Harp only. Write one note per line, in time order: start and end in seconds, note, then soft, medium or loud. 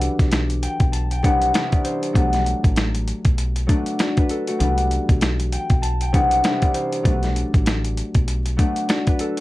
0.00 1.22 E3 medium
0.00 1.22 G3 medium
0.00 2.13 A3 medium
0.00 1.24 B3 medium
0.00 1.24 D4 loud
0.00 0.69 F#4 medium
0.00 1.60 A4 medium
0.00 1.29 B4 medium
0.00 0.94 D5 medium
0.63 1.11 G5 medium
0.92 2.37 A5 medium
1.12 1.30 G5 medium
1.23 1.53 C2 medium
1.23 1.54 E3 medium
1.23 1.55 G3 medium
1.23 1.52 B3 medium
1.23 1.52 D4 medium
1.23 1.62 F#5 medium
1.55 2.20 C2 medium
1.55 2.20 E3 medium
1.55 2.20 G3 medium
1.55 2.11 B3 medium
1.55 2.11 D4 medium
1.55 3.28 E5 medium
1.73 3.57 D5 medium
1.84 2.20 C5 medium
2.13 3.65 F#3 medium
2.13 3.67 A3 medium
2.13 3.68 B3 medium
2.13 3.68 D4 loud
3.67 4.65 F#3 medium
3.67 3.96 A3 medium
3.67 3.96 B3 medium
3.67 3.97 D4 medium
3.99 4.47 F#4 medium
3.99 5.83 D5 medium
4.17 4.60 D4 medium
4.17 6.18 B4 medium
4.30 6.50 A4 medium
4.48 7.03 A3 soft
4.48 5.58 F#4 medium
4.59 6.12 E3 medium
4.59 6.12 G3 medium
4.59 6.14 B3 medium
4.59 6.14 D4 loud
5.52 6.01 G5 medium
5.82 7.27 A5 medium
6.02 6.20 G5 medium
6.12 6.43 C2 medium
6.12 6.44 E3 medium
6.12 6.45 G3 medium
6.12 6.42 B3 medium
6.12 6.42 D4 medium
6.12 6.51 F#5 medium
6.45 7.10 C2 medium
6.45 7.10 E3 medium
6.45 7.10 G3 medium
6.45 7.01 B3 medium
6.45 7.01 D4 medium
6.45 8.18 E5 medium
6.63 8.47 D5 medium
6.74 7.10 C5 medium
7.03 8.55 F#3 medium
7.03 8.57 A3 medium
7.03 8.58 B3 medium
7.03 8.58 D4 loud
8.57 9.40 F#3 medium
8.57 8.86 A3 medium
8.57 8.86 B3 medium
8.57 8.86 D4 loud
8.89 9.38 F#4 medium
8.89 9.40 D5 medium
9.07 9.40 D4 medium
9.07 9.40 B4 medium
9.20 9.40 A4 medium